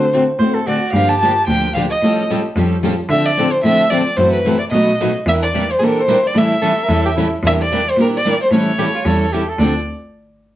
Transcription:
Already playing: D3 C5
0.13 D3 A3 C4 F#4 A4
0.39 A2 D3 A3 C4 F#4 A4 C5
0.55 A4
0.67 D3 A3 C4 F#4 A4 D5
0.93 G2 D3 F3 A#3 D4 G4 F5
1.09 A5
1.20 D3 F3 A#3 D4 G4 A5
1.48 D2 D3 F3 A#3 D4 G4 G5
1.74 D3 F3 A#3 D4 G4 F5
1.90 D#5
2.02 A2 F3 G3 C#4 F4 G4 A4
2.30 F3 G3 C#4 F4 G4 A4
2.56 F2 F3 G3 C#4 F4 G4 A4
2.83 F3 G3 C#4 F4 G4 A4
3.09 D3 F3 C4 D4 A4 E5
3.26 D5
3.37 D3 F3 C4 D4 A4
3.52 C5
3.64 A2 D3 F3 C4 D4 A4 E5
3.90 D3 F3 C4 D4 A4 D5
4.17 F#2 C3 E3 F#3 A3 C4 E4 F#4 C5
4.21 A4
4.32 B4
4.45 C3 E3 F#3 A3 C4 E4 F#4 A4
4.59 D5
4.71 B2 F#3 A3 D#4 F#4 B4 D#5
5.01 B2 F#3 A3 D#4 F#4 B4
5.26 E2 E3 G3 A#3 D4 E4 G4 A#4 E5
5.43 D5
5.54 E3 G3 A#3 D4 E4 G4 A#4
5.71 C5
5.79 A#2 E3 G3 A#3 D4 E4 G4 G#4
5.83 A4 A#4
6.00 C5
6.08 E3 G3 A#3 D4 E4 G4 A#4
6.27 D5
6.35 A2 E3 G3 C#4 E4 A4 E5
6.62 E3 G3 C#4 E4 A4
6.83 A#4
6.89 E2 E3 G3 C#4 E4 A4
7.06 G4
7.16 E3 G3 C#4 E4 A4
7.43 E2 E3 G3 A#3 D4 E4 G4 A#4 E5
7.62 D5
7.72 E3 G3 A#3 D4 E4 G4 A#4
7.90 C5
7.97 A#2 E3 G3 A#3 D4 E4 G4 A#4
8.01 A#4
8.17 D5
8.25 E3 G3 A#3 D4 E4 G4 A#4
8.43 C5
8.51 A2 E3 G3 C#4 E4 A4 C#5
8.78 E3 G3 C#4 E4 G4 A4
8.95 F4
9.05 E2 E3 G3 C#4 E4 A4
9.32 E3 G3 C#4 E4 G4 A4
9.49 A4
9.59 D2 D3 F3 C4 D4 A4 D5

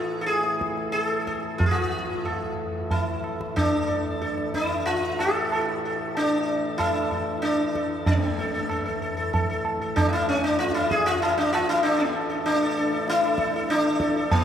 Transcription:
Already playing: A2 E3 F4 A4
0.21 A4
0.26 G#4, tabla te
0.44 tabla te
0.61 tabla ke
0.77 tabla te
0.92 G#4, tabla te
1.03 A4
1.11 tabla te
1.27 A4, tabla ke
1.43 tabla te
1.58 F4, tabla tin, tabla ge
1.66 G#4
1.71 F4
2.25 A4, tabla na
2.91 E4, tabla tin, tabla ge
3.24 tabla na
3.41 tabla ke
3.56 D4, tabla na, tabla ge
3.87 A4, tabla ge
4.21 A4, tabla te
4.38 tabla te
4.54 E4, tabla ke
4.70 tabla te
4.86 F4, tabla tin
5.19 A4, tabla na
5.52 A4, tabla na
5.85 A4
6.15 D4, tabla tin
6.78 E4 A4, tabla na, tabla ge
7.11 A4, tabla ge
7.42 D4 A4, tabla te
7.59 tabla te
7.75 A4, tabla ke
7.91 tabla te
8.06 A2 E3 A#3, tabla tin, tabla ge
8.23 A4
8.39 A4
8.54 A4
8.70 A4, tabla na
8.86 A4
9.02 A4
9.17 A4
9.33 A4, tabla tin, tabla ge
9.50 A4
9.65 tabla na
9.81 A4
9.96 D4, tabla na, tabla ge
10.09 F4
10.13 E4
10.28 C#4, tabla te
10.44 D4
10.59 F4, tabla te
10.74 E4, tabla te
10.91 G#4, tabla ke
11.06 F4, tabla te
11.22 E4, tabla tin
11.38 D4
11.53 F4, tabla na
11.69 E4
11.83 D4, tabla na
11.99 A#3
12.13 A4, tabla na
12.30 A4
12.46 D4, tabla tin
12.62 A4
12.77 A4, tabla na
12.93 A4
13.08 E4, tabla te
13.23 A4, tabla te
13.38 A4, tabla ke
13.53 A4, tabla te
13.69 D4, tabla te
13.84 tabla te
14.00 A4, tabla ke
14.16 A4, tabla te
14.31 A#3, tabla tin, tabla ge

